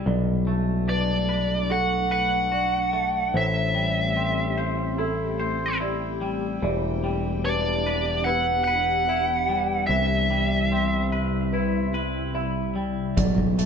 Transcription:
0.06 picked electric bass B1, clean electric guitar B2, ambient pad A3 D4, felt piano D5
0.47 clean electric guitar A3
0.88 clean electric guitar D4, felt piano B4, lead electric guitar D5
1.29 clean electric guitar B4
1.70 clean electric guitar F#4, felt piano A4, lead electric guitar F#5
2.11 clean electric guitar B4, lead electric guitar F#5
2.52 clean electric guitar F#4, felt piano D5
2.93 clean electric guitar A3
3.34 picked electric bass A1, clean electric guitar A2, ambient pad A3 C4 G4, felt piano C5, lead electric guitar E5
3.75 clean electric guitar G3
4.17 clean electric guitar C4
4.57 clean electric guitar C5
4.98 clean electric guitar E4, felt piano A4
5.40 clean electric guitar C5
5.80 clean electric guitar E4, felt piano D5
6.21 clean electric guitar G3
6.62 picked electric bass E1, ambient pad E3 B3 D4, clean electric guitar E3, felt piano D5
7.04 clean electric guitar G3
7.44 clean electric guitar D4, felt piano B4, lead electric guitar D5
7.86 clean electric guitar B4
8.24 clean electric guitar E4, felt piano B4, lead electric guitar F#5
8.64 clean electric guitar B4, lead electric guitar F#5
9.08 clean electric guitar E4, felt piano E5
9.49 clean electric guitar G3
9.87 picked electric bass C2, ambient pad C3 G3 E4, clean electric guitar C3, lead electric guitar E5, felt piano E5
10.30 clean electric guitar G3
10.72 clean electric guitar C4
11.12 clean electric guitar B4
11.52 clean electric guitar E4, felt piano B4
11.94 clean electric guitar B4
12.35 clean electric guitar E4, felt piano E5
12.76 clean electric guitar G3
13.17 picked electric bass B1, clean electric guitar B2, felt piano D5, kick, closed hi-hat
13.38 kick
13.59 clean electric guitar A3, closed hi-hat

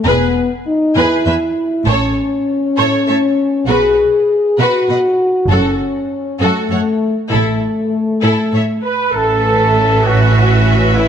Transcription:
0.04 double bass section E1, cello section E2, french horn section B3, violin section G#4 B4, viola section B4
0.66 french horn section D#4
0.96 cello section E2, french horn section E4, violin section G#4 B4, viola section B4
1.25 cello section E2, viola section B4, violin section E5 G#5
1.86 double bass section A1, cello section A2, french horn section C#4, violin section A4 C#5, viola section C#5
2.78 cello section A2, violin section A4 C#5, viola section C#5
3.07 cello section A2, viola section C#5, violin section E5 A5
3.67 double bass section B1, cello section B2, violin section F#4 B4, french horn section G#4, viola section B4
4.58 cello section B2, french horn section F#4, violin section F#4 B4, viola section B4
4.89 cello section B2, viola section B4, violin section D#5 F#5
5.49 double bass section F#1, cello section F#2, french horn section C#4, violin section F#4 A4, viola section A4
6.40 cello section F#2, french horn section A3, violin section F#4 A4, viola section A4
6.70 cello section F#2, viola section A4, violin section C#5 F#5
7.30 double bass section A1, cello section A2, french horn section A3, violin section E4 A4, viola section A4
8.22 cello section A2, violin section E4 A4, viola section A4
8.52 cello section A2, viola section A4, violin section C#5 E5
8.83 viola section B4, trumpet section B4
9.12 double bass section A1, cello section A2, french horn section C#4 B4, violin section C#4 B4 E5, viola section A4, trumpet section A4
10.04 viola section F#4, trumpet section F#4
10.96 viola section E4, trumpet section E4

